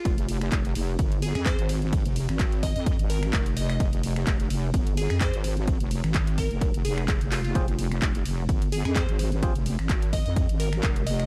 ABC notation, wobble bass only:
X:1
M:4/4
L:1/16
Q:"Swing 16ths" 1/4=128
K:Fm
V:1 name="Wobble bass" clef=bass
F,,,4 F,,,2 F,,,2 G,,,3 F,,2 A,,,3- | A,,, F,,,2 A,,,4 F,,2 A,,,3 F,,,4 | F,,,4 F,,,2 F,,,2 G,,,3 F,,2 A,,,3- | A,,, F,,,2 A,,,4 F,,,2 F,,, F,,,3 F,,,3 |
F,,,4 F,,,2 F,,,2 G,,,3 F,,2 A,,,3- | A,,, F,,,2 A,,,4 F,,2 A,,,3 F,,,4 |]